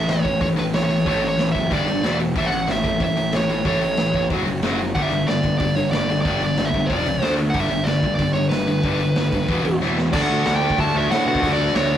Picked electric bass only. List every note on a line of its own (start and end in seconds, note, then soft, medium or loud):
0.08 0.40 A1 medium
0.41 0.72 A1 medium
0.73 1.05 A1 medium
1.06 1.37 A1 loud
1.38 1.54 A1 medium
1.55 1.71 F#1 medium
1.71 1.86 G1 medium
1.86 2.02 G1 medium
2.04 2.35 E1 medium
2.36 2.52 A1 medium
2.52 2.68 A1 medium
2.68 3.00 A1 medium
3.00 3.32 A1 medium
3.34 3.65 A1 medium
3.65 3.97 A1 medium
3.98 4.13 A1 medium
4.14 4.30 A1 medium
4.30 4.45 F#1 medium
4.46 4.62 F#1 medium
4.63 4.94 F#1 medium
4.96 5.11 G1 medium
5.12 5.27 G1 medium
5.27 5.59 G1 medium
5.60 5.91 G1 medium
5.92 6.23 G1 medium
6.25 6.56 G1 medium
6.58 6.73 G1 medium
6.73 6.89 G1 medium
6.90 7.05 F1 medium
7.05 7.21 C#2 medium
7.22 7.53 D2 medium
7.55 7.70 G1 loud
7.70 7.86 G1 medium
7.87 8.18 G1 medium
8.19 8.50 G1 medium
8.52 8.83 G1 medium
8.84 9.15 G1 medium
9.17 9.32 G1 medium
9.32 9.48 G1 medium
9.49 9.64 E1 medium
9.65 9.81 E1 medium
9.81 10.12 E1 medium
10.13 10.26 D2 medium
10.30 10.42 D2 medium
10.47 10.71 D2 medium
10.78 10.91 D2 medium
10.95 11.07 D2 medium
11.11 11.23 A2 medium
11.26 11.39 B2 medium
11.43 11.68 D2 loud
11.75 11.97 D2 loud